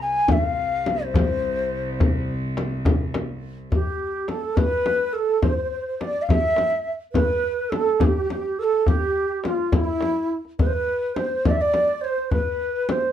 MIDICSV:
0, 0, Header, 1, 6, 480
1, 0, Start_track
1, 0, Tempo, 573066
1, 236, Time_signature, 6, 3, 24, 8
1, 10992, End_track
2, 0, Start_track
2, 0, Title_t, "Flute"
2, 0, Program_c, 0, 73
2, 3117, Note_on_c, 0, 67, 69
2, 3588, Note_on_c, 0, 69, 64
2, 3601, Note_off_c, 0, 67, 0
2, 3815, Note_on_c, 0, 71, 75
2, 3827, Note_off_c, 0, 69, 0
2, 4297, Note_on_c, 0, 69, 80
2, 4309, Note_off_c, 0, 71, 0
2, 4538, Note_off_c, 0, 69, 0
2, 4543, Note_on_c, 0, 72, 75
2, 4591, Note_off_c, 0, 72, 0
2, 4596, Note_on_c, 0, 72, 56
2, 4660, Note_off_c, 0, 72, 0
2, 4665, Note_on_c, 0, 72, 68
2, 4711, Note_off_c, 0, 72, 0
2, 4716, Note_on_c, 0, 72, 60
2, 4784, Note_off_c, 0, 72, 0
2, 4789, Note_on_c, 0, 72, 69
2, 4844, Note_off_c, 0, 72, 0
2, 4849, Note_on_c, 0, 72, 59
2, 4916, Note_off_c, 0, 72, 0
2, 4921, Note_on_c, 0, 72, 65
2, 4984, Note_off_c, 0, 72, 0
2, 5020, Note_on_c, 0, 74, 68
2, 5249, Note_off_c, 0, 74, 0
2, 5259, Note_on_c, 0, 76, 86
2, 5317, Note_off_c, 0, 76, 0
2, 5322, Note_on_c, 0, 76, 60
2, 5387, Note_off_c, 0, 76, 0
2, 5394, Note_on_c, 0, 76, 67
2, 5446, Note_off_c, 0, 76, 0
2, 5451, Note_on_c, 0, 76, 63
2, 5492, Note_off_c, 0, 76, 0
2, 5497, Note_on_c, 0, 76, 70
2, 5561, Note_off_c, 0, 76, 0
2, 5566, Note_on_c, 0, 76, 55
2, 5630, Note_off_c, 0, 76, 0
2, 5635, Note_on_c, 0, 76, 74
2, 5689, Note_off_c, 0, 76, 0
2, 5694, Note_on_c, 0, 76, 58
2, 5761, Note_off_c, 0, 76, 0
2, 5964, Note_on_c, 0, 71, 85
2, 6447, Note_on_c, 0, 69, 76
2, 6459, Note_off_c, 0, 71, 0
2, 6688, Note_off_c, 0, 69, 0
2, 6693, Note_on_c, 0, 67, 71
2, 6758, Note_off_c, 0, 67, 0
2, 6763, Note_on_c, 0, 67, 51
2, 6827, Note_off_c, 0, 67, 0
2, 6835, Note_on_c, 0, 67, 68
2, 6895, Note_off_c, 0, 67, 0
2, 6900, Note_on_c, 0, 67, 59
2, 6952, Note_off_c, 0, 67, 0
2, 6957, Note_on_c, 0, 67, 50
2, 7019, Note_off_c, 0, 67, 0
2, 7031, Note_on_c, 0, 67, 49
2, 7077, Note_off_c, 0, 67, 0
2, 7082, Note_on_c, 0, 67, 65
2, 7195, Note_on_c, 0, 69, 79
2, 7208, Note_off_c, 0, 67, 0
2, 7426, Note_off_c, 0, 69, 0
2, 7431, Note_on_c, 0, 67, 73
2, 7878, Note_off_c, 0, 67, 0
2, 7919, Note_on_c, 0, 65, 67
2, 8160, Note_on_c, 0, 64, 67
2, 8173, Note_off_c, 0, 65, 0
2, 8696, Note_off_c, 0, 64, 0
2, 8872, Note_on_c, 0, 71, 75
2, 8931, Note_on_c, 0, 72, 65
2, 8944, Note_off_c, 0, 71, 0
2, 8991, Note_on_c, 0, 71, 79
2, 9004, Note_off_c, 0, 72, 0
2, 9336, Note_on_c, 0, 72, 68
2, 9349, Note_off_c, 0, 71, 0
2, 9598, Note_on_c, 0, 74, 79
2, 9610, Note_off_c, 0, 72, 0
2, 9705, Note_off_c, 0, 74, 0
2, 9710, Note_on_c, 0, 74, 73
2, 10062, Note_on_c, 0, 72, 83
2, 10075, Note_off_c, 0, 74, 0
2, 10307, Note_on_c, 0, 71, 73
2, 10319, Note_off_c, 0, 72, 0
2, 10663, Note_off_c, 0, 71, 0
2, 10669, Note_on_c, 0, 71, 71
2, 10782, Note_off_c, 0, 71, 0
2, 10803, Note_on_c, 0, 72, 70
2, 10992, Note_off_c, 0, 72, 0
2, 10992, End_track
3, 0, Start_track
3, 0, Title_t, "Ney"
3, 0, Program_c, 1, 77
3, 14, Note_on_c, 1, 80, 102
3, 263, Note_on_c, 1, 77, 84
3, 276, Note_off_c, 1, 80, 0
3, 868, Note_on_c, 1, 72, 92
3, 881, Note_off_c, 1, 77, 0
3, 1953, Note_off_c, 1, 72, 0
3, 3108, Note_on_c, 1, 67, 79
3, 3591, Note_on_c, 1, 69, 80
3, 3604, Note_off_c, 1, 67, 0
3, 3832, Note_on_c, 1, 71, 99
3, 3845, Note_off_c, 1, 69, 0
3, 4307, Note_on_c, 1, 70, 83
3, 4320, Note_off_c, 1, 71, 0
3, 4341, Note_on_c, 1, 69, 90
3, 4349, Note_off_c, 1, 70, 0
3, 4550, Note_off_c, 1, 69, 0
3, 4564, Note_on_c, 1, 72, 82
3, 5031, Note_on_c, 1, 75, 88
3, 5044, Note_off_c, 1, 72, 0
3, 5061, Note_on_c, 1, 74, 96
3, 5069, Note_off_c, 1, 75, 0
3, 5207, Note_on_c, 1, 77, 72
3, 5220, Note_off_c, 1, 74, 0
3, 5248, Note_off_c, 1, 77, 0
3, 5248, Note_on_c, 1, 77, 103
3, 5286, Note_on_c, 1, 76, 112
3, 5295, Note_off_c, 1, 77, 0
3, 5800, Note_off_c, 1, 76, 0
3, 5977, Note_on_c, 1, 71, 87
3, 6462, Note_on_c, 1, 69, 91
3, 6475, Note_off_c, 1, 71, 0
3, 6721, Note_on_c, 1, 68, 82
3, 6733, Note_off_c, 1, 69, 0
3, 6748, Note_on_c, 1, 67, 89
3, 6757, Note_off_c, 1, 68, 0
3, 7194, Note_off_c, 1, 67, 0
3, 7199, Note_on_c, 1, 70, 83
3, 7233, Note_on_c, 1, 69, 91
3, 7241, Note_off_c, 1, 70, 0
3, 7433, Note_on_c, 1, 67, 74
3, 7445, Note_off_c, 1, 69, 0
3, 7901, Note_off_c, 1, 67, 0
3, 7901, Note_on_c, 1, 67, 77
3, 7931, Note_on_c, 1, 65, 83
3, 7939, Note_off_c, 1, 67, 0
3, 8140, Note_off_c, 1, 65, 0
3, 8140, Note_on_c, 1, 65, 93
3, 8232, Note_off_c, 1, 65, 0
3, 8232, Note_on_c, 1, 64, 93
3, 8686, Note_off_c, 1, 64, 0
3, 8883, Note_on_c, 1, 71, 85
3, 9365, Note_on_c, 1, 72, 90
3, 9377, Note_off_c, 1, 71, 0
3, 9595, Note_on_c, 1, 74, 95
3, 9608, Note_off_c, 1, 72, 0
3, 9636, Note_on_c, 1, 76, 87
3, 9648, Note_off_c, 1, 74, 0
3, 9726, Note_on_c, 1, 74, 106
3, 9739, Note_off_c, 1, 76, 0
3, 10081, Note_on_c, 1, 73, 83
3, 10094, Note_off_c, 1, 74, 0
3, 10117, Note_on_c, 1, 72, 90
3, 10126, Note_off_c, 1, 73, 0
3, 10317, Note_off_c, 1, 72, 0
3, 10330, Note_on_c, 1, 71, 77
3, 10812, Note_on_c, 1, 72, 85
3, 10825, Note_off_c, 1, 71, 0
3, 10992, Note_off_c, 1, 72, 0
3, 10992, End_track
4, 0, Start_track
4, 0, Title_t, "Cello section"
4, 0, Program_c, 2, 48
4, 0, Note_on_c, 2, 36, 64
4, 220, Note_off_c, 2, 36, 0
4, 230, Note_on_c, 2, 36, 69
4, 3158, Note_off_c, 2, 36, 0
4, 10992, End_track
5, 0, Start_track
5, 0, Title_t, "Frame drum"
5, 237, Note_on_c, 9, 64, 100
5, 321, Note_off_c, 9, 64, 0
5, 723, Note_on_c, 9, 64, 78
5, 807, Note_off_c, 9, 64, 0
5, 967, Note_on_c, 9, 64, 101
5, 1051, Note_off_c, 9, 64, 0
5, 1681, Note_on_c, 9, 64, 84
5, 1765, Note_off_c, 9, 64, 0
5, 2159, Note_on_c, 9, 64, 70
5, 2243, Note_off_c, 9, 64, 0
5, 2394, Note_on_c, 9, 64, 97
5, 2478, Note_off_c, 9, 64, 0
5, 2637, Note_on_c, 9, 64, 72
5, 2721, Note_off_c, 9, 64, 0
5, 3114, Note_on_c, 9, 64, 69
5, 3198, Note_off_c, 9, 64, 0
5, 3590, Note_on_c, 9, 64, 64
5, 3674, Note_off_c, 9, 64, 0
5, 3828, Note_on_c, 9, 64, 89
5, 3912, Note_off_c, 9, 64, 0
5, 4069, Note_on_c, 9, 64, 69
5, 4152, Note_off_c, 9, 64, 0
5, 4543, Note_on_c, 9, 64, 85
5, 4627, Note_off_c, 9, 64, 0
5, 5034, Note_on_c, 9, 64, 64
5, 5118, Note_off_c, 9, 64, 0
5, 5279, Note_on_c, 9, 64, 97
5, 5363, Note_off_c, 9, 64, 0
5, 5513, Note_on_c, 9, 64, 69
5, 5596, Note_off_c, 9, 64, 0
5, 5990, Note_on_c, 9, 64, 96
5, 6074, Note_off_c, 9, 64, 0
5, 6468, Note_on_c, 9, 64, 72
5, 6552, Note_off_c, 9, 64, 0
5, 6707, Note_on_c, 9, 64, 95
5, 6791, Note_off_c, 9, 64, 0
5, 6955, Note_on_c, 9, 64, 69
5, 7038, Note_off_c, 9, 64, 0
5, 7437, Note_on_c, 9, 64, 85
5, 7521, Note_off_c, 9, 64, 0
5, 7916, Note_on_c, 9, 64, 69
5, 8000, Note_off_c, 9, 64, 0
5, 8146, Note_on_c, 9, 64, 94
5, 8230, Note_off_c, 9, 64, 0
5, 8396, Note_on_c, 9, 64, 62
5, 8480, Note_off_c, 9, 64, 0
5, 8872, Note_on_c, 9, 64, 82
5, 8956, Note_off_c, 9, 64, 0
5, 9351, Note_on_c, 9, 64, 72
5, 9435, Note_off_c, 9, 64, 0
5, 9593, Note_on_c, 9, 64, 87
5, 9677, Note_off_c, 9, 64, 0
5, 9833, Note_on_c, 9, 64, 66
5, 9916, Note_off_c, 9, 64, 0
5, 10314, Note_on_c, 9, 64, 72
5, 10398, Note_off_c, 9, 64, 0
5, 10795, Note_on_c, 9, 64, 79
5, 10879, Note_off_c, 9, 64, 0
5, 10992, End_track
6, 0, Start_track
6, 0, Title_t, "Tombak"
6, 239, Note_on_c, 9, 64, 95
6, 323, Note_off_c, 9, 64, 0
6, 844, Note_on_c, 9, 62, 26
6, 928, Note_off_c, 9, 62, 0
6, 956, Note_on_c, 9, 64, 87
6, 1040, Note_off_c, 9, 64, 0
6, 1678, Note_on_c, 9, 64, 106
6, 1761, Note_off_c, 9, 64, 0
6, 1922, Note_on_c, 9, 62, 26
6, 2006, Note_off_c, 9, 62, 0
6, 2153, Note_on_c, 9, 63, 89
6, 2237, Note_off_c, 9, 63, 0
6, 2282, Note_on_c, 9, 62, 22
6, 2366, Note_off_c, 9, 62, 0
6, 2389, Note_on_c, 9, 64, 97
6, 2473, Note_off_c, 9, 64, 0
6, 2632, Note_on_c, 9, 63, 90
6, 2716, Note_off_c, 9, 63, 0
6, 2870, Note_on_c, 9, 62, 24
6, 2954, Note_off_c, 9, 62, 0
6, 2993, Note_on_c, 9, 62, 26
6, 3077, Note_off_c, 9, 62, 0
6, 3115, Note_on_c, 9, 64, 80
6, 3199, Note_off_c, 9, 64, 0
6, 3350, Note_on_c, 9, 62, 23
6, 3434, Note_off_c, 9, 62, 0
6, 3585, Note_on_c, 9, 63, 65
6, 3669, Note_off_c, 9, 63, 0
6, 3706, Note_on_c, 9, 62, 22
6, 3790, Note_off_c, 9, 62, 0
6, 3825, Note_on_c, 9, 64, 81
6, 3908, Note_off_c, 9, 64, 0
6, 4069, Note_on_c, 9, 63, 69
6, 4153, Note_off_c, 9, 63, 0
6, 4307, Note_on_c, 9, 62, 26
6, 4390, Note_off_c, 9, 62, 0
6, 4431, Note_on_c, 9, 62, 26
6, 4515, Note_off_c, 9, 62, 0
6, 4544, Note_on_c, 9, 64, 79
6, 4628, Note_off_c, 9, 64, 0
6, 4784, Note_on_c, 9, 62, 25
6, 4868, Note_off_c, 9, 62, 0
6, 5032, Note_on_c, 9, 63, 71
6, 5115, Note_off_c, 9, 63, 0
6, 5148, Note_on_c, 9, 62, 22
6, 5232, Note_off_c, 9, 62, 0
6, 5267, Note_on_c, 9, 64, 79
6, 5350, Note_off_c, 9, 64, 0
6, 5498, Note_on_c, 9, 63, 75
6, 5581, Note_off_c, 9, 63, 0
6, 5754, Note_on_c, 9, 62, 27
6, 5838, Note_off_c, 9, 62, 0
6, 5982, Note_on_c, 9, 64, 84
6, 6066, Note_off_c, 9, 64, 0
6, 6228, Note_on_c, 9, 62, 25
6, 6312, Note_off_c, 9, 62, 0
6, 6469, Note_on_c, 9, 63, 69
6, 6553, Note_off_c, 9, 63, 0
6, 6585, Note_on_c, 9, 62, 27
6, 6669, Note_off_c, 9, 62, 0
6, 6701, Note_on_c, 9, 64, 100
6, 6785, Note_off_c, 9, 64, 0
6, 7186, Note_on_c, 9, 62, 25
6, 7270, Note_off_c, 9, 62, 0
6, 7306, Note_on_c, 9, 62, 23
6, 7390, Note_off_c, 9, 62, 0
6, 7424, Note_on_c, 9, 64, 97
6, 7508, Note_off_c, 9, 64, 0
6, 7672, Note_on_c, 9, 62, 25
6, 7756, Note_off_c, 9, 62, 0
6, 7904, Note_on_c, 9, 63, 68
6, 7987, Note_off_c, 9, 63, 0
6, 8022, Note_on_c, 9, 62, 23
6, 8106, Note_off_c, 9, 62, 0
6, 8144, Note_on_c, 9, 64, 86
6, 8227, Note_off_c, 9, 64, 0
6, 8380, Note_on_c, 9, 63, 75
6, 8464, Note_off_c, 9, 63, 0
6, 8627, Note_on_c, 9, 62, 27
6, 8710, Note_off_c, 9, 62, 0
6, 8751, Note_on_c, 9, 62, 30
6, 8835, Note_off_c, 9, 62, 0
6, 8871, Note_on_c, 9, 64, 85
6, 8955, Note_off_c, 9, 64, 0
6, 9122, Note_on_c, 9, 62, 29
6, 9206, Note_off_c, 9, 62, 0
6, 9353, Note_on_c, 9, 63, 68
6, 9437, Note_off_c, 9, 63, 0
6, 9483, Note_on_c, 9, 62, 29
6, 9567, Note_off_c, 9, 62, 0
6, 9594, Note_on_c, 9, 64, 82
6, 9677, Note_off_c, 9, 64, 0
6, 9828, Note_on_c, 9, 63, 71
6, 9912, Note_off_c, 9, 63, 0
6, 10078, Note_on_c, 9, 62, 29
6, 10162, Note_off_c, 9, 62, 0
6, 10200, Note_on_c, 9, 62, 28
6, 10283, Note_off_c, 9, 62, 0
6, 10314, Note_on_c, 9, 64, 73
6, 10398, Note_off_c, 9, 64, 0
6, 10562, Note_on_c, 9, 62, 28
6, 10646, Note_off_c, 9, 62, 0
6, 10800, Note_on_c, 9, 63, 77
6, 10884, Note_off_c, 9, 63, 0
6, 10924, Note_on_c, 9, 62, 27
6, 10992, Note_off_c, 9, 62, 0
6, 10992, End_track
0, 0, End_of_file